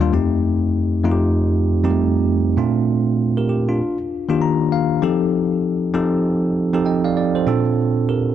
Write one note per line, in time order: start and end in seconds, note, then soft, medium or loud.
0.00 0.14 D#2 medium
0.00 0.14 G3 medium
0.00 0.14 A#3 medium
0.00 0.14 D4 medium
0.00 0.13 F4 loud
0.12 0.80 F2 medium
0.12 0.80 A3 medium
0.12 0.81 C4 medium
0.12 0.81 D#4 medium
0.12 0.81 G4 medium
1.04 1.61 F2 loud
1.04 1.61 A3 medium
1.04 1.61 C4 medium
1.04 1.61 D#4 medium
1.04 1.12 F4 medium
1.12 1.65 G4 loud
1.84 2.38 F2 medium
1.84 1.89 G3 medium
1.84 2.38 C4 medium
1.84 2.38 D#4 medium
1.84 2.39 G4 medium
1.90 2.41 A3 medium
2.57 3.25 A#2 medium
2.57 3.25 A3 medium
2.57 3.25 C4 medium
2.57 3.19 D4 medium
2.57 3.19 F4 medium
3.37 3.48 G4 medium
3.37 3.48 A#4 medium
3.49 3.67 G4 medium
3.69 3.97 D4 medium
3.69 3.97 F4 medium
4.29 4.83 D#3 medium
4.29 4.83 A#3 medium
4.29 4.83 D4 medium
4.29 4.84 F4 medium
4.29 4.84 G4 medium
4.42 4.70 A#5 medium
4.72 5.00 F5 medium
5.02 5.70 F3 medium
5.02 5.70 C4 medium
5.02 5.70 D#4 medium
5.02 5.70 G4 medium
5.02 5.71 A4 medium
5.94 6.51 F3 loud
5.94 6.51 C4 medium
5.94 6.51 D#4 medium
5.94 6.51 G4 medium
5.94 6.51 A4 loud
6.73 7.28 F3 medium
6.73 7.28 C4 medium
6.73 7.28 D#4 medium
6.73 7.28 G4 medium
6.73 6.86 A4 medium
6.85 7.04 D#5 medium
6.85 7.03 G5 medium
7.04 7.16 D5 medium
7.04 7.16 F5 medium
7.17 7.34 D5 medium
7.35 7.47 A4 medium
7.35 7.64 C5 medium
7.47 8.15 A#2 medium
7.47 8.15 C4 medium
7.47 8.15 D4 medium
7.47 8.15 F4 medium
7.47 8.08 A4 medium
8.09 8.35 G4 medium
8.09 8.35 A#4 medium